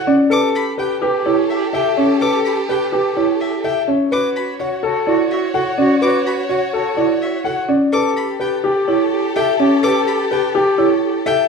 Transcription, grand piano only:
0.00 0.14 F#5 medium
0.07 0.38 D5 medium
0.30 0.61 A4 medium
0.78 1.09 B4 medium
1.02 1.33 G4 medium
1.26 1.57 C#5 medium
1.73 2.04 E5 medium
1.97 2.28 C#5 medium
2.21 2.52 A4 medium
2.69 3.00 B4 medium
2.92 3.24 G4 medium
3.17 3.48 C#5 medium
3.64 3.95 E5 medium
3.88 4.19 C#5 medium
4.12 4.43 B4 medium
4.60 4.91 C#5 medium
4.83 5.14 A4 medium
5.07 5.38 D5 medium
5.54 5.85 F#5 medium
5.78 6.09 D5 medium
6.02 6.33 B4 medium
6.49 6.81 C#5 medium
6.73 7.04 A4 medium
6.97 7.28 D5 medium
7.45 7.76 F#5 medium
7.69 8.00 D5 medium
7.93 8.24 A4 medium
8.40 8.71 B4 medium
8.64 8.95 G4 medium
8.88 9.19 C#5 medium
9.36 9.67 E5 medium
9.60 9.90 C#5 medium
9.83 10.14 A4 medium
10.31 10.62 B4 medium
10.55 10.86 G4 medium
10.78 11.09 C#5 medium
11.26 11.48 E5 medium

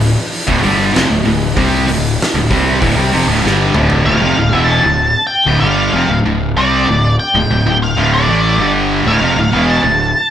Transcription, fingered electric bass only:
0.00 0.15 D1 medium
0.48 0.63 D1 loud
0.65 0.93 G1 loud
0.96 1.09 F1 loud
1.10 1.25 D1 medium
1.26 1.55 D1 medium
1.57 1.86 C2 medium
1.88 2.17 D1 medium
2.33 2.49 D1 medium
2.51 2.80 C2 medium
2.82 2.95 D1 medium
2.95 3.11 C2 loud
3.12 3.26 F1 loud
3.27 3.42 D1 loud
3.44 3.73 G1 loud
3.74 4.04 D1 medium
4.06 4.21 D1 medium
4.21 4.36 F1 loud
4.37 4.51 D1 medium
4.51 4.81 E1 loud
4.83 5.13 D1 medium
5.46 5.61 D1 loud
5.62 5.91 G1 medium
5.93 6.08 F1 loud
6.08 6.23 D1 medium
6.24 6.53 D1 medium
6.55 6.85 C2 loud
6.87 7.16 D1 medium
7.34 7.48 D1 medium
7.49 7.64 D1 medium
7.65 7.94 D1 medium
7.96 8.25 D1 loud
8.27 8.56 A1 loud
8.58 9.01 G1 medium
9.05 9.19 D1 loud
9.21 9.35 F1 loud
9.36 9.50 D1 medium
9.52 9.81 E1 medium
9.83 10.12 D1 medium

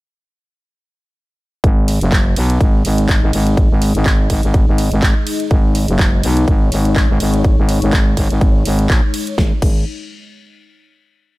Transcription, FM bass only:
1.64 1.99 G#1 loud
2.01 2.35 F#1 loud
2.36 2.59 B1 loud
2.61 2.83 G#1 medium
2.85 3.20 G#1 loud
3.22 3.31 G#1 loud
3.33 3.69 G#1 medium
3.71 3.93 G#1 loud
3.95 4.28 G#1 loud
4.30 4.41 G#1 loud
4.43 4.65 G#1 loud
4.68 4.90 G#1 loud
4.92 5.14 G#1 loud
5.51 5.86 G#1 loud
5.89 6.22 F#1 loud
6.24 6.46 B1 loud
6.48 6.70 G#1 loud
6.72 7.07 G#1 loud
7.09 7.19 G#1 medium
7.20 7.56 G#1 medium
7.58 7.80 G#1 loud
7.82 8.15 G#1 loud
8.17 8.28 G#1 loud
8.30 8.64 G#1 loud
8.65 8.88 G#1 loud
8.90 9.01 A#1 loud
9.38 9.52 G#1 loud
9.62 9.85 G#1 loud

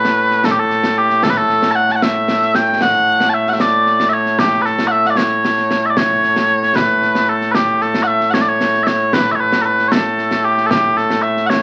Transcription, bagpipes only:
0.00 11.62 A2 medium
0.00 11.62 A3 medium
0.00 0.45 B4 medium
0.45 0.51 A4 medium
0.51 0.59 G4 medium
0.59 0.98 A4 loud
0.98 1.23 G4 medium
1.23 1.30 A4 loud
1.30 1.37 B4 medium
1.37 1.71 A4 loud
1.71 1.75 A5 medium
1.75 1.92 F#5 medium
1.92 1.96 A5 medium
1.96 2.02 F#5 medium
2.02 2.55 E5 medium
2.55 2.82 G5 loud
2.82 3.29 F#5 loud
3.29 3.34 A5 medium
3.34 3.49 E5 medium
3.49 3.53 F#5 medium
3.53 3.61 E5 medium
3.61 4.09 D5 medium
4.09 4.13 E5 medium
4.13 4.39 C#5 medium
4.39 4.62 G4 loud
4.62 4.87 A4 medium
4.62 4.65 B4 medium
4.87 5.07 E5 medium
4.87 4.91 F#5 medium
5.07 5.17 D5 medium
5.07 5.10 F#5 medium
5.17 5.86 C#5 medium
5.86 5.90 E5 medium
5.90 5.97 D5 medium
5.97 6.76 C#5 medium
6.76 7.29 B4 medium
7.29 7.51 A4 medium
7.51 7.82 G4 medium
7.51 7.55 B4 medium
7.82 8.03 A4 medium
8.03 8.30 E5 medium
8.03 8.07 F#5 medium
8.30 8.41 C#5 medium
8.30 8.34 F#5 medium
8.41 8.49 D5 medium
8.49 8.83 C#5 medium
8.83 9.14 C#5 medium
8.83 8.87 E5 medium
9.14 9.32 B4 loud
9.32 9.40 C#5 medium
9.32 9.35 E5 medium
9.40 9.62 B4 medium
9.62 9.65 A4 medium
9.62 9.88 B4 medium
9.88 10.44 A4 medium
9.88 9.92 C#5 medium
10.44 10.66 G4 medium
10.66 10.97 G4 medium
10.66 10.70 A4 medium
10.97 11.22 A4 medium
11.22 11.46 E5 medium
11.46 11.62 C#5 medium
11.46 11.50 F#5 medium

